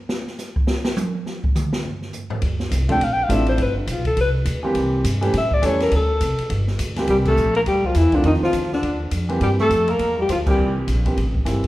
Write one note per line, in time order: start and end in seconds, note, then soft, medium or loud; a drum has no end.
0.09 snare medium
0.27 snare soft
0.39 snare soft
0.39 hi-hat pedal medium
0.56 kick medium
0.67 snare loud
0.85 snare medium
0.96 hi-hat pedal medium
0.96 high tom medium
1.15 high tom soft
1.26 snare medium
1.44 kick medium
1.55 hi-hat pedal medium
1.55 mid tom medium
1.73 snare medium
1.84 floor tom soft
2.02 snare soft
2.13 floor tom soft
2.13 hi-hat pedal medium
2.30 floor tom medium
2.42 2.70 D2 medium
2.42 kick soft
2.42 ride medium
2.60 snare medium
2.71 2.99 C2 medium
2.71 kick soft
2.71 snare soft
2.71 hi-hat pedal medium
2.71 ride medium
2.89 2.99 F3 medium
2.89 3.00 A3 medium
2.89 3.00 C4 medium
2.89 3.00 D4 medium
2.89 3.00 A4 medium
2.89 3.05 G5 loud
2.89 kick medium
2.89 ride medium
3.00 3.29 A#1 medium
3.00 3.15 F5 medium
3.00 kick soft
3.00 ride medium
3.13 3.25 G5 loud
3.24 3.35 F5 medium
3.29 3.58 A1 loud
3.29 3.59 F3 medium
3.29 3.59 A3 medium
3.29 3.59 C4 medium
3.29 3.59 D4 medium
3.29 3.59 E4 medium
3.29 kick soft
3.29 hi-hat pedal medium
3.29 ride medium
3.33 3.48 E5 medium
3.46 3.64 C5 loud
3.46 ride soft
3.58 3.87 G1 medium
3.58 kick soft
3.58 ride medium
3.62 3.77 B4 medium
3.77 3.93 D4 soft
3.87 4.16 B1 medium
3.87 kick soft
3.87 hi-hat pedal medium
3.87 ride medium
3.91 4.06 F4 medium
4.05 4.17 A4 medium
4.05 kick soft
4.05 ride soft
4.16 4.45 C2 medium
4.16 kick soft
4.16 ride medium
4.21 4.30 B4 medium
4.45 4.74 D2 medium
4.45 kick soft
4.45 hi-hat pedal soft
4.45 ride medium
4.63 5.02 E3 medium
4.63 5.02 G3 medium
4.63 5.02 A#3 medium
4.63 5.02 C4 medium
4.63 5.03 G4 medium
4.74 5.03 C2 medium
4.74 kick soft
4.74 ride medium
5.04 5.33 G2 medium
5.04 kick soft
5.04 hi-hat pedal medium
5.04 ride medium
5.21 5.32 E3 medium
5.21 5.32 G3 medium
5.21 5.32 A3 medium
5.21 5.33 C#4 medium
5.21 5.33 G4 medium
5.21 ride medium
5.33 5.62 A2 medium
5.33 kick soft
5.33 snare soft
5.33 ride medium
5.38 5.55 E5 loud
5.51 5.68 D5 loud
5.51 kick medium
5.62 5.91 E2 medium
5.62 5.92 E3 medium
5.62 5.92 G3 medium
5.62 5.92 A3 medium
5.62 5.92 C#4 medium
5.62 5.92 A4 medium
5.62 kick soft
5.62 hi-hat pedal medium
5.62 ride medium
5.66 5.82 C#5 loud
5.80 5.97 A#4 loud
5.80 snare medium
5.80 ride soft
5.92 6.20 D2 medium
5.92 kick soft
5.92 ride medium
5.96 6.52 A4 medium
6.21 6.37 C2 medium
6.21 kick soft
6.21 hi-hat pedal soft
6.21 ride medium
6.38 muted upright bass stroke soft
6.38 ride medium
6.50 6.78 G1 medium
6.50 kick soft
6.50 ride medium
6.67 snare soft
6.79 7.07 D2 medium
6.79 kick soft
6.79 hi-hat pedal medium
6.79 ride medium
6.96 7.35 E3 medium
6.96 7.36 G3 medium
6.96 7.36 A#3 medium
6.96 7.36 C4 medium
6.96 7.36 G4 medium
6.96 snare medium
6.96 ride soft
7.07 7.36 C2 medium
7.07 7.17 G3 medium
7.07 7.18 G4 medium
7.07 kick soft
7.07 ride medium
7.25 7.54 A3 medium
7.25 7.54 A4 medium
7.25 kick medium
7.25 crash medium
7.37 7.65 A#1 medium
7.37 hi-hat pedal medium
7.55 7.61 A#3 medium
7.55 7.61 A#4 medium
7.55 ride soft
7.66 7.95 D2 medium
7.66 7.87 G3 medium
7.66 7.88 G4 loud
7.66 kick soft
7.66 ride medium
7.84 7.97 F3 medium
7.84 7.99 F4 medium
7.84 kick soft
7.95 8.12 E2 medium
7.95 8.16 E3 medium
7.95 8.17 E4 medium
7.95 snare soft
7.95 hi-hat pedal soft
7.95 ride medium
8.12 8.25 D3 medium
8.12 8.51 D#3 medium
8.12 8.52 F3 medium
8.12 8.52 A3 medium
8.12 8.52 C4 medium
8.12 8.26 D4 medium
8.12 8.52 F4 medium
8.12 muted upright bass stroke soft
8.12 kick medium
8.12 ride soft
8.24 8.41 F2 medium
8.24 8.33 D#3 medium
8.24 8.35 D#4 medium
8.24 kick soft
8.24 ride medium
8.34 snare soft
8.42 8.70 F3 medium
8.42 8.71 F4 medium
8.42 muted upright bass stroke soft
8.42 snare soft
8.53 8.82 D2 medium
8.53 kick soft
8.53 hi-hat pedal medium
8.53 ride medium
8.63 snare soft
8.73 8.99 D3 medium
8.73 9.00 D4 medium
8.73 snare soft
8.82 9.11 D#2 medium
8.82 kick soft
8.82 ride medium
9.11 9.40 F2 medium
9.11 kick soft
9.11 hi-hat pedal medium
9.11 ride medium
9.29 9.68 E3 medium
9.29 9.68 G3 medium
9.29 9.68 A#3 medium
9.29 9.68 C4 medium
9.29 9.69 G4 medium
9.29 ride soft
9.41 9.69 G2 medium
9.41 9.50 G3 medium
9.41 9.51 G4 medium
9.41 kick soft
9.41 ride medium
9.58 9.91 A3 medium
9.58 9.93 A4 medium
9.58 snare soft
9.70 9.98 F2 medium
9.70 kick soft
9.70 hi-hat pedal soft
9.70 ride medium
9.88 10.17 A#3 medium
9.88 10.19 A#4 medium
9.88 ride soft
9.99 10.28 E2 medium
9.99 kick soft
9.99 ride medium
10.18 10.28 G3 medium
10.18 10.30 G4 medium
10.29 10.57 D2 medium
10.29 10.37 F3 medium
10.29 10.39 F4 medium
10.29 kick soft
10.29 hi-hat pedal medium
10.29 ride medium
10.46 10.85 E3 medium
10.46 10.85 G3 soft
10.46 10.74 G3 medium
10.46 10.85 A#3 medium
10.46 10.86 C4 medium
10.46 10.86 G4 medium
10.46 kick medium
10.46 crash medium
10.50 10.76 G4 medium
10.59 10.87 C2 medium
10.87 11.16 A#1 medium
10.87 kick soft
10.87 hi-hat pedal soft
10.87 ride medium
11.05 11.16 E3 medium
11.05 11.16 G3 medium
11.05 11.16 A#3 soft
11.05 11.16 C4 medium
11.05 11.16 G4 medium
11.05 kick soft
11.05 ride soft
11.17 11.45 A1 medium
11.17 kick soft
11.17 ride medium
11.35 kick medium
11.45 11.67 G1 medium
11.45 11.61 E3 medium
11.45 11.61 G3 medium
11.45 11.61 A#3 medium
11.45 11.62 C4 medium
11.45 11.62 E4 medium
11.45 kick soft
11.45 snare soft
11.45 hi-hat pedal medium
11.45 ride medium
11.64 kick soft
11.64 ride soft